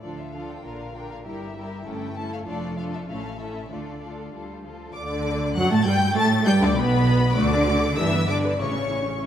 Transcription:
0.01 0.56 D2 soft
0.01 0.57 D3 soft
0.01 0.33 F3 soft
0.01 0.33 D4 soft
0.01 0.33 F4 soft
0.01 0.33 A4 soft
0.01 0.16 D5 medium
0.19 0.34 E5 soft
0.32 0.64 F3 soft
0.32 0.64 D4 soft
0.32 0.63 F4 soft
0.32 0.64 A4 soft
0.32 0.48 F5 medium
0.50 0.65 G5 soft
0.63 1.17 A#1 soft
0.63 1.18 A#2 soft
0.63 0.94 D3 soft
0.63 0.94 D4 soft
0.63 0.94 F4 soft
0.63 0.94 A#4 soft
0.63 0.95 F5 medium
0.95 1.25 D3 soft
0.95 1.25 D4 soft
0.95 1.25 F4 soft
0.95 1.25 A#4 soft
0.95 1.10 G5 medium
1.12 1.18 F5 soft
1.25 1.79 G1 medium
1.25 1.79 G2 medium
1.25 1.55 G3 soft
1.25 1.55 E4 soft
1.25 1.55 G4 soft
1.25 1.55 A#4 soft
1.25 1.85 E5 medium
1.56 1.86 G3 soft
1.56 1.86 E4 soft
1.56 1.86 G4 soft
1.56 1.86 A#4 soft
1.85 2.39 G1 medium
1.85 2.40 G2 medium
1.85 2.16 A3 soft
1.85 2.16 C#4 soft
1.85 2.15 E4 soft
1.85 2.14 A4 soft
1.85 2.16 G5 medium
2.16 2.46 A3 soft
2.16 2.46 C#4 soft
2.16 2.46 E4 soft
2.16 2.45 A4 medium
2.16 2.32 A5 medium
2.33 2.39 F5 medium
2.46 3.01 F1 medium
2.46 3.00 F2 medium
2.46 2.76 A3 medium
2.46 2.76 D4 medium
2.46 2.75 F4 soft
2.46 2.75 A4 medium
2.46 2.77 D5 medium
2.77 3.07 A3 soft
2.77 3.07 D4 soft
2.77 3.07 F4 medium
2.77 3.07 A4 medium
2.77 2.84 F5 medium
2.93 2.99 E5 medium
3.08 3.62 A1 medium
3.08 3.62 A2 medium
3.08 3.39 A3 soft
3.08 3.38 C#4 soft
3.08 3.37 E4 soft
3.08 3.37 A4 medium
3.08 3.38 F5 medium
3.38 3.69 A3 soft
3.38 3.70 C#4 soft
3.38 3.69 E4 soft
3.38 3.69 A4 soft
3.38 3.69 E5 medium
3.69 4.25 D2 soft
3.69 4.25 D3 soft
3.69 4.01 A3 soft
3.69 4.01 D4 soft
3.69 4.01 F4 soft
3.69 4.01 A4 soft
3.69 4.32 D5 soft
4.02 4.33 A3 soft
4.02 4.33 D4 soft
4.02 4.32 F4 soft
4.02 4.33 A4 soft
4.32 4.88 D2 medium
4.32 4.88 D3 soft
4.32 4.62 G3 soft
4.32 4.62 F4 soft
4.32 4.62 A4 soft
4.63 4.95 F3 soft
4.63 4.94 F4 soft
4.63 4.94 A4 soft
4.94 5.52 D2 loud
4.94 5.52 D3 medium
4.94 5.53 D5 medium
4.94 5.52 D6 loud
5.55 5.71 F#2 loud
5.55 5.71 F#3 loud
5.55 5.71 F#5 loud
5.55 5.71 F#6 loud
5.70 5.85 A2 loud
5.70 5.86 A3 loud
5.70 5.77 A3 loud
5.70 5.87 A5 medium
5.70 5.87 A6 loud
5.86 6.16 G2 loud
5.86 6.16 G3 medium
5.86 5.94 G3 loud
5.86 6.16 G5 loud
5.86 6.16 G6 loud
6.16 6.46 A2 loud
6.16 6.24 A3 loud
6.16 6.46 A3 loud
6.16 6.26 A5 loud
6.16 6.46 A6 loud
6.45 6.62 G2 loud
6.45 6.62 G3 loud
6.45 6.53 G3 loud
6.45 6.62 G5 loud
6.45 6.52 G6 loud
6.61 6.77 D2 loud
6.61 6.77 D3 loud
6.61 6.68 D3 loud
6.61 6.79 D5 loud
6.61 6.78 D6 loud
6.75 7.38 B1 loud
6.75 7.37 B2 loud
6.75 7.37 B3 loud
6.75 7.38 B4 loud
6.75 7.38 B5 loud
7.36 7.95 D2 loud
7.36 7.97 D3 loud
7.36 7.51 A3 medium
7.36 7.51 F#4 medium
7.36 7.97 D5 loud
7.36 7.99 D6 loud
7.52 7.68 D4 medium
7.52 7.68 A4 medium
7.65 7.83 A3 medium
7.65 7.82 F#4 medium
7.83 7.97 D4 medium
7.83 7.99 A4 medium
7.97 8.59 G1 loud
7.97 8.29 E3 loud
7.97 8.13 D4 medium
7.97 8.13 G4 medium
7.97 8.29 E5 loud
7.97 8.29 E6 loud
8.12 8.29 B3 medium
8.12 8.29 B4 medium
8.27 8.59 D3 loud
8.27 8.44 D4 medium
8.27 8.44 G4 medium
8.27 8.60 D5 loud
8.27 8.37 D6 loud
8.43 8.60 B3 medium
8.43 8.59 B4 medium
8.59 9.26 A1 medium
8.59 9.21 C#3 medium
8.59 8.73 C#4 medium
8.59 8.74 E4 medium
8.59 9.22 C#5 medium
8.59 9.21 C#6 loud
8.74 8.90 A3 medium
8.74 8.88 C#4 medium
8.89 9.02 C#4 medium
8.89 9.06 E4 medium
9.03 9.21 A3 medium
9.03 9.18 C#4 medium
9.19 9.26 C#4 medium
9.19 9.26 E4 medium

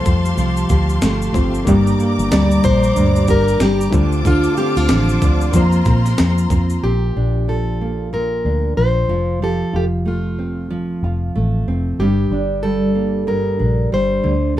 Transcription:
0.00 0.37 F3 medium
0.00 1.30 G3 medium
0.00 1.02 A3 medium
0.00 1.35 C4 medium
0.00 1.30 F4 medium
0.00 0.70 G4 medium
0.00 1.31 G4 medium
0.00 3.90 G4 medium
0.00 0.99 C5 medium
0.00 1.32 C5 medium
0.00 1.64 F5 medium
0.00 1.65 A5 medium
0.00 1.65 C6 medium
0.06 0.33 F2 medium
0.06 1.75 F4 medium
0.06 kick loud
0.06 shaker medium
0.26 shaker medium
0.37 0.64 C2 loud
0.37 1.75 F3 medium
0.37 shaker medium
0.57 shaker medium
0.69 0.97 D2 loud
0.69 1.68 G4 medium
0.69 kick loud
0.69 shaker medium
0.90 shaker soft
1.02 1.29 G1 loud
1.02 1.75 A3 medium
1.02 snare loud
1.02 shaker medium
1.22 shaker medium
1.33 1.61 G1 medium
1.33 1.66 A3 medium
1.33 1.75 C4 medium
1.33 1.67 F4 medium
1.33 1.66 G4 medium
1.33 1.67 C5 medium
1.33 kick medium
1.33 shaker medium
1.55 shaker soft
1.65 1.94 G1 loud
1.65 2.95 G2 medium
1.65 3.88 A#3 medium
1.65 3.88 D4 medium
1.65 3.89 G4 medium
1.65 3.27 G4 medium
1.65 3.91 D5 medium
1.65 3.89 D5 medium
1.65 3.90 A#5 medium
1.65 3.91 D6 medium
1.65 kick loud
1.65 shaker medium
1.87 shaker medium
1.99 4.00 A#3 medium
1.99 shaker medium
2.19 2.29 G1 medium
2.19 shaker medium
2.32 2.58 D2 loud
2.32 3.60 G3 medium
2.32 2.62 D5 loud
2.32 snare loud
2.32 shaker medium
2.52 shaker medium
2.64 2.90 A#1 loud
2.64 4.01 D4 medium
2.64 3.30 C5 loud
2.64 kick loud
2.64 shaker medium
2.84 shaker medium
2.96 3.23 D2 loud
2.96 4.00 G2 medium
2.96 shaker medium
3.16 shaker medium
3.28 3.55 G1 loud
3.28 4.01 G4 medium
3.28 3.59 A#4 loud
3.28 kick medium
3.28 shaker medium
3.48 shaker medium
3.60 3.87 G1 loud
3.60 4.01 G3 medium
3.60 4.27 G4 medium
3.60 snare medium
3.60 shaker medium
3.81 shaker medium
3.89 4.46 D2 medium
3.89 4.24 D3 medium
3.89 5.49 A3 medium
3.89 5.50 D4 medium
3.89 5.50 F4 medium
3.89 6.80 F4 medium
3.89 6.80 C5 medium
3.89 5.52 A5 medium
3.89 5.52 D6 medium
3.89 kick medium
3.89 shaker medium
3.94 5.51 C5 medium
4.12 shaker soft
4.25 5.62 D3 medium
4.25 4.57 F4 loud
4.25 5.62 A4 medium
4.25 kick loud
4.25 shaker medium
4.44 shaker medium
4.57 5.62 C4 medium
4.57 4.77 G4 medium
4.57 shaker medium
4.77 4.87 D2 medium
4.77 6.51 F4 medium
4.77 shaker medium
4.89 5.16 A1 loud
4.89 5.54 F3 medium
4.89 snare loud
4.89 shaker medium
5.09 shaker medium
5.22 5.49 D2 medium
5.22 5.62 D4 medium
5.22 kick loud
5.22 shaker medium
5.41 shaker medium
5.52 5.80 F2 loud
5.52 7.48 F3 medium
5.52 6.79 A#3 medium
5.52 6.80 C4 medium
5.52 6.81 F4 medium
5.52 6.82 A#5 medium
5.52 6.82 C6 medium
5.52 kick medium
5.52 shaker medium
5.56 6.81 C5 medium
5.72 shaker medium
5.85 6.12 A#2 medium
5.85 6.84 A#4 medium
5.85 kick loud
5.85 shaker medium
6.06 snare soft
6.06 shaker medium
6.18 6.46 F2 loud
6.18 6.51 C4 medium
6.18 snare loud
6.18 shaker medium
6.38 shaker medium
6.50 6.77 F2 medium
6.50 6.91 C4 medium
6.50 kick medium
6.50 shaker medium
6.70 shaker soft
6.83 7.10 A#1 medium
6.83 8.12 A#2 medium
6.83 7.50 G4 medium
6.83 9.42 G4 medium
7.16 8.41 A#1 medium
7.16 8.44 D4 medium
7.48 8.77 F3 medium
7.48 8.13 A4 medium
7.81 9.17 A#3 medium
8.13 9.17 A#2 medium
8.13 8.77 A#4 medium
8.45 8.71 D2 medium
8.45 9.17 D4 soft
8.77 9.03 A#1 medium
8.77 9.09 F3 medium
8.77 9.43 C5 medium
9.08 9.61 F1 medium
9.08 9.41 F3 medium
9.42 10.69 F3 medium
9.42 12.00 G4 medium
9.42 9.75 A4 medium
9.73 10.99 F1 medium
9.73 11.02 F4 medium
9.73 9.84 G4 medium
10.05 11.34 A3 medium
10.05 11.32 F4 medium
10.39 11.67 C4 medium
10.70 12.07 F3 medium
11.03 11.29 F1 medium
11.03 12.07 F4 medium
11.36 11.62 A1 medium
11.36 12.07 A3 medium
11.67 11.94 F1 medium
11.67 12.07 C4 medium
11.99 12.25 G1 medium
11.99 13.26 G2 medium
11.99 12.66 G4 medium
11.99 14.33 G4 medium
12.31 13.56 G1 medium
12.31 13.59 D4 medium
12.63 13.91 G3 medium
12.63 13.28 A4 medium
12.95 14.32 A#3 medium
13.27 14.32 G2 medium
13.27 13.93 A#4 medium
13.59 13.87 A#1 medium
13.59 14.60 D4 medium
13.92 14.19 G1 medium
13.92 14.32 G3 medium
13.92 14.58 C5 medium
14.24 14.60 D2 medium
14.24 14.57 D3 medium

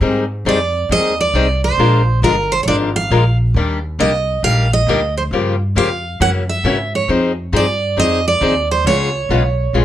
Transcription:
0.01 0.44 G#2 medium
0.01 0.23 D#3 medium
0.01 0.23 G3 medium
0.01 0.23 C4 medium
0.01 0.24 D#4 medium
0.01 0.24 G#4 medium
0.45 0.88 F2 medium
0.45 0.57 D#3 medium
0.45 0.58 G3 medium
0.45 0.57 C4 medium
0.45 0.58 D#4 medium
0.45 0.58 G#4 loud
0.45 0.88 D5 medium
0.89 1.32 D#2 medium
0.89 1.12 D#3 medium
0.89 1.12 G3 medium
0.89 1.13 C4 medium
0.89 1.12 D#4 medium
0.89 1.13 G#4 medium
0.89 1.20 D#5 loud
1.21 1.61 D5 medium
1.34 1.77 C2 medium
1.34 1.46 D#3 medium
1.34 1.46 G3 medium
1.34 1.46 C4 medium
1.34 1.46 D#4 loud
1.34 1.46 G#4 loud
1.64 2.19 C5 medium
1.78 2.21 A#1 medium
1.78 2.00 F3 medium
1.78 2.01 G#3 medium
1.78 2.01 D4 medium
1.78 2.01 F4 medium
1.78 2.01 A#4 medium
2.22 2.65 G1 medium
2.22 2.34 F3 medium
2.22 2.34 G#3 medium
2.22 2.35 D4 medium
2.22 2.35 F4 medium
2.22 2.35 A#4 loud
2.22 2.52 A#4 medium
2.52 2.63 C5 medium
2.63 3.09 G#1 medium
2.63 2.67 C#5 medium
2.67 2.89 F3 medium
2.67 2.89 G#3 medium
2.67 2.89 D4 medium
2.67 2.89 F4 medium
2.67 2.90 A#4 medium
2.67 2.75 D5 loud
2.96 3.37 F5 medium
3.10 3.54 A#1 medium
3.10 3.23 F3 medium
3.10 3.23 G#3 medium
3.10 3.23 D4 medium
3.10 3.23 F4 medium
3.10 3.23 A#4 medium
3.54 3.98 D#2 medium
3.54 3.78 D#3 medium
3.54 3.78 G3 medium
3.54 3.78 A#3 medium
3.54 3.78 D4 medium
3.54 3.78 G4 medium
3.99 4.42 C2 medium
3.99 4.11 D#3 medium
3.99 4.11 G3 medium
3.99 4.11 A#3 loud
3.99 4.11 D4 medium
3.99 4.11 G4 loud
3.99 4.44 D#5 medium
4.43 4.86 A#1 medium
4.43 4.66 D#3 medium
4.43 4.66 G3 medium
4.43 4.66 A#3 medium
4.43 4.66 D4 medium
4.43 4.66 G4 medium
4.43 4.73 F5 loud
4.73 5.14 D#5 loud
4.87 5.30 D2 medium
4.87 5.00 D#3 medium
4.87 5.00 G3 medium
4.87 5.00 A#3 loud
4.87 5.00 D4 medium
4.87 5.00 G4 loud
5.17 5.22 C5 medium
5.31 5.74 G2 medium
5.31 5.54 C#3 medium
5.31 5.54 F3 medium
5.31 5.54 A#3 medium
5.31 5.55 F4 medium
5.31 5.55 G4 medium
5.75 6.19 F2 medium
5.75 5.88 C#3 medium
5.75 5.88 F3 medium
5.75 5.88 A#3 loud
5.75 5.88 F4 medium
5.75 5.88 G4 medium
5.75 6.18 F5 medium
6.20 6.63 F#2 medium
6.20 6.42 C#3 medium
6.20 6.42 E3 medium
6.20 6.42 A#3 medium
6.20 6.42 C#4 medium
6.20 6.43 F#4 medium
6.20 6.29 F#5 loud
6.49 6.95 E5 medium
6.64 7.07 G#2 loud
6.64 6.76 C#3 loud
6.64 6.76 E3 medium
6.64 6.76 A#3 medium
6.64 6.77 C#4 medium
6.64 6.77 F#4 loud
6.95 7.09 C#5 medium
7.08 7.51 F2 medium
7.08 7.31 F3 medium
7.08 7.31 C4 medium
7.08 7.31 D#4 medium
7.08 7.31 G#4 medium
7.52 7.96 G2 medium
7.52 7.65 F3 loud
7.52 7.64 C4 medium
7.52 7.65 D#4 medium
7.52 7.65 G#4 medium
7.52 7.99 D5 medium
7.97 8.40 F2 medium
7.97 8.19 F3 medium
7.97 8.19 C4 medium
7.97 8.19 D#4 medium
7.97 8.19 G#4 medium
7.97 8.27 D#5 loud
8.28 8.68 D5 medium
8.41 8.84 D#2 loud
8.41 8.53 F3 medium
8.41 8.53 C4 medium
8.41 8.53 D#4 medium
8.41 8.53 G#4 medium
8.71 8.85 C5 medium
8.85 9.28 C#2 medium
8.85 9.08 C#3 medium
8.85 9.08 G#3 medium
8.85 9.08 B3 medium
8.85 9.08 F4 medium
8.85 9.08 G#4 medium
8.85 9.85 C#5 medium
9.29 9.72 B1 medium
9.29 9.42 C#3 medium
9.29 9.42 G#3 medium
9.29 9.42 B3 medium
9.29 9.42 F4 medium
9.29 9.42 G#4 medium
9.73 9.85 A#1 medium
9.73 9.85 C#3 medium
9.73 9.85 G#3 medium
9.73 9.85 B3 medium
9.73 9.85 F4 medium
9.73 9.85 G#4 medium

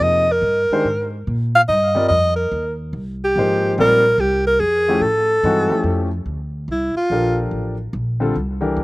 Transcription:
0.00 0.41 F2 medium
0.00 0.24 C3 medium
0.00 0.24 F3 medium
0.00 0.24 A#3 soft
0.00 0.25 D#4 soft
0.00 0.25 G#4 medium
0.00 0.33 D#5 loud
0.32 1.14 A#4 medium
0.42 0.68 G2 medium
0.70 0.85 D#3 medium
0.70 0.85 G#3 medium
0.70 0.85 D4 medium
0.70 0.85 G4 medium
0.70 0.85 C5 medium
0.70 muted upright bass stroke soft
0.85 1.26 G#2 medium
1.27 1.68 A#2 medium
1.55 1.62 F5 medium
1.68 2.09 G2 medium
1.68 2.07 D#5 medium
1.95 2.09 G3 medium
1.95 2.09 C4 medium
1.95 2.09 F4 medium
1.95 2.09 A#4 medium
1.95 2.09 D5 medium
2.08 2.51 F2 medium
2.08 2.34 D#5 medium
2.36 2.75 A#4 medium
2.52 2.92 D#2 medium
2.93 3.34 C2 medium
3.25 3.75 G4 medium
3.36 3.76 G#1 medium
3.36 4.00 F3 medium
3.36 4.00 G#3 soft
3.36 4.00 A#3 soft
3.36 4.00 D#4 medium
3.36 4.00 C5 medium
3.78 4.17 A#1 medium
3.78 4.02 G3 medium
3.78 4.02 C4 medium
3.78 4.02 F4 medium
3.78 4.03 A#4 medium
3.78 4.22 A#4 loud
3.78 4.03 D5 medium
4.18 4.59 C2 loud
4.18 4.46 G4 medium
4.47 4.61 A#4 loud
4.60 5.00 F2 medium
4.60 5.03 G#4 medium
4.88 5.01 F3 medium
4.88 5.01 A3 medium
4.88 5.01 C#4 medium
4.88 5.01 E4 medium
4.88 5.02 G4 medium
5.01 5.42 A2 medium
5.01 6.12 A4 medium
5.43 5.69 G2 medium
5.43 5.68 E3 medium
5.43 5.68 G#3 medium
5.43 5.68 C4 medium
5.43 5.68 D#4 medium
5.43 5.69 F#4 medium
5.70 6.06 F3 medium
5.70 6.06 A3 soft
5.70 6.07 C#4 soft
5.70 6.07 E4 medium
5.70 6.07 G4 medium
5.70 muted upright bass stroke soft
5.84 6.25 F2 medium
6.26 6.67 D2 medium
6.68 6.93 C2 medium
6.68 6.95 E4 medium
6.95 7.49 F4 medium
6.95 muted upright bass stroke soft
7.10 7.50 A#1 medium
7.10 7.73 F3 soft
7.10 7.74 D4 soft
7.10 7.74 G4 soft
7.10 7.74 A4 soft
7.10 7.74 A#4 medium
7.51 7.92 A1 medium
7.93 8.33 A#1 medium
8.20 8.33 D3 medium
8.20 8.33 G3 soft
8.20 8.33 C4 medium
8.20 8.34 F4 medium
8.20 8.34 A4 medium
8.36 8.76 C2 medium
8.61 8.84 E3 medium
8.61 8.84 D4 medium
8.61 8.84 G4 medium
8.61 8.84 A4 medium
8.61 8.84 A#4 medium
8.77 8.84 D2 medium

